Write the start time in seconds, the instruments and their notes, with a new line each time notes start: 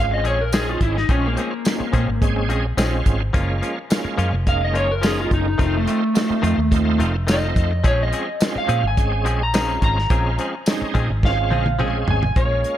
Already playing: fingered electric bass G#1, tonewheel organ G#3 C4 C#4 F4
0.00 electric slide guitar F5
0.11 electric slide guitar D#5, muted clean electric guitar stroke
0.24 fingered electric bass A#1, clean electric guitar F3 C4 C#4 G#4, electric slide guitar C#5, closed hi-hat
0.40 electric slide guitar A#4, muted clean electric guitar stroke
0.52 clean electric guitar F3 C4 C#4 G#4, tonewheel organ G#3 C4 C#4 D#4, electric slide guitar G#4, snare, closed hi-hat, tambourine
0.69 electric slide guitar F4
0.81 fingered electric bass G#1, electric slide guitar E4, muted clean electric guitar stroke, kick, closed hi-hat
0.96 electric slide guitar D#4, muted clean electric guitar stroke, snare
1.09 fingered electric bass A#1, clean electric guitar F3 C4 C#4 G#4, tonewheel organ G#3 C4 C#4 F4, electric slide guitar C#4, kick, closed hi-hat
1.26 electric slide guitar A#3
1.37 clean electric guitar F3 C4 C#4 G#4, electric slide guitar A#3, closed hi-hat
1.52 muted clean electric guitar stroke
1.65 tonewheel organ G#3 C4 C#4 F4, muted clean electric guitar stroke, snare, closed hi-hat, tambourine
1.80 muted clean electric guitar stroke, muted fingered electric bass stroke
1.93 fingered electric bass A#2, clean electric guitar F3 C4 C#4 G#4, kick, closed hi-hat
2.08 fingered electric bass G#1, muted clean electric guitar stroke
2.21 tonewheel organ G#3 C4 C#4 G#4, kick, closed hi-hat
2.36 muted clean electric guitar stroke
2.49 fingered electric bass A#1, clean electric guitar F3 C4 C#4 G#4, closed hi-hat
2.64 muted clean electric guitar stroke
2.77 fingered electric bass A#1, clean electric guitar F3 C4 C#4 G#4, tonewheel organ G#3 C4 C#4 F4, snare, closed hi-hat, tambourine
3.05 fingered electric bass G#1, muted clean electric guitar stroke, kick, closed hi-hat
3.20 muted clean electric guitar stroke
3.33 fingered electric bass F#1, clean electric guitar F3 A#3 C#4 F4, tonewheel organ G#3 A#3 C#4 F4, kick, closed hi-hat
3.61 clean electric guitar F3 A#3 C#4 F4, closed hi-hat
3.76 muted clean electric guitar stroke
3.90 tonewheel organ G#3 A#3 C#4 F4, muted clean electric guitar stroke, snare, closed hi-hat, tambourine
4.05 muted clean electric guitar stroke, muted fingered electric bass stroke
4.18 fingered electric bass F#2, clean electric guitar F3 A#3 C#4 F4, closed hi-hat
4.33 fingered electric bass F1, muted clean electric guitar stroke
4.46 tonewheel organ G#3 A#3 C#4 D#4, electric slide guitar F5, kick, closed hi-hat
4.61 electric slide guitar D#5, muted clean electric guitar stroke
4.74 fingered electric bass F#1, clean electric guitar F3 A#3 C#4 F4, electric slide guitar C#5, closed hi-hat
4.89 electric slide guitar A#4, muted clean electric guitar stroke
5.02 clean electric guitar F3 A#3 C#4 F4, tonewheel organ G#3 A#3 C#4 D#4, electric slide guitar G#4, snare, closed hi-hat, tambourine
5.20 electric slide guitar F4
5.30 fingered electric bass F#1, electric slide guitar D#4, muted clean electric guitar stroke, kick, closed hi-hat
5.45 electric slide guitar D#4, muted clean electric guitar stroke
5.58 fingered electric bass F1, clean electric guitar D#3 A3 C4 F4, tonewheel organ A3 C4 D#4 F4, electric slide guitar D#4, kick, closed hi-hat
5.77 electric slide guitar A3
5.86 clean electric guitar D#3 A3 C4 F4, electric slide guitar A3, closed hi-hat
6.01 muted clean electric guitar stroke
6.14 tonewheel organ A3 C4 D#4 F4, muted clean electric guitar stroke, snare, closed hi-hat, tambourine
6.29 muted clean electric guitar stroke, muted fingered electric bass stroke
6.42 fingered electric bass F2, clean electric guitar D#3 A3 C4 F4, closed hi-hat
6.58 fingered electric bass D#2
6.71 tonewheel organ A3 C4 D#4 F4, kick, closed hi-hat
6.85 muted clean electric guitar stroke
6.99 fingered electric bass F1, clean electric guitar D#3 A3 C4 F4, closed hi-hat
7.14 muted clean electric guitar stroke
7.27 clean electric guitar D#3 A3 C4 F4, tonewheel organ A3 C4 D#4 F4, electric slide guitar D#5, snare, closed hi-hat, tambourine
7.56 fingered electric bass F2, muted clean electric guitar stroke, kick, closed hi-hat
7.71 muted clean electric guitar stroke
7.84 fingered electric bass A#1, clean electric guitar F3 C4 C#4 G#4, tonewheel organ G#3 C4 C#4 F4, electric slide guitar C#5, kick, closed hi-hat
8.03 electric slide guitar D#5
8.12 clean electric guitar F3 C4 C#4 G#4, closed hi-hat
8.27 muted clean electric guitar stroke
8.40 tonewheel organ G#3 C4 C#4 F4, muted clean electric guitar stroke, snare, closed hi-hat, tambourine
8.55 electric slide guitar F5, muted clean electric guitar stroke, muted fingered electric bass stroke
8.68 fingered electric bass A#2, clean electric guitar F3 C4 C#4 G#4, closed hi-hat
8.83 fingered electric bass G#1, muted clean electric guitar stroke
8.88 electric slide guitar G#5
8.97 tonewheel organ G#3 C4 C#4 G#4, kick, closed hi-hat
9.12 muted clean electric guitar stroke
9.25 fingered electric bass A#1, clean electric guitar F3 C4 C#4 G#4, closed hi-hat
9.40 electric slide guitar A#5, muted clean electric guitar stroke
9.54 clean electric guitar F3 C4 C#4 G#4, tonewheel organ G#3 C4 C#4 F4, snare, closed hi-hat, tambourine
9.82 fingered electric bass G#1, electric slide guitar A#5, muted clean electric guitar stroke, kick, closed hi-hat
9.97 muted clean electric guitar stroke, snare
10.10 fingered electric bass A#1, clean electric guitar F3 C4 C#4 G#4, tonewheel organ G#3 C4 C#4 F4, kick, closed hi-hat
10.39 clean electric guitar F3 C4 C#4 G#4, closed hi-hat
10.53 muted clean electric guitar stroke
10.66 tonewheel organ G#3 C4 C#4 D#4, muted clean electric guitar stroke, snare, closed hi-hat, tambourine
10.81 muted clean electric guitar stroke, muted fingered electric bass stroke
10.94 fingered electric bass A#2, clean electric guitar F3 C4 C#4 G#4, kick, closed hi-hat
11.09 fingered electric bass G#1, muted clean electric guitar stroke
11.23 tonewheel organ G#3 C4 C#4 F4, electric slide guitar F5, kick, snare
11.38 muted clean electric guitar stroke
11.51 fingered electric bass A#1, clean electric guitar F3 C4 C#4 G#4, high tom
11.66 muted clean electric guitar stroke, high tom
11.79 clean electric guitar F3 C4 C#4 G#4, tonewheel organ G#3 C4 C#4 G#4, mid tom
12.08 fingered electric bass G#1, electric slide guitar G#5, muted clean electric guitar stroke, floor tom
12.22 muted clean electric guitar stroke, floor tom
12.36 fingered electric bass A#1, tonewheel organ G#3 A#3 C#4 F4, electric slide guitar C#5, kick, closed hi-hat
12.64 closed hi-hat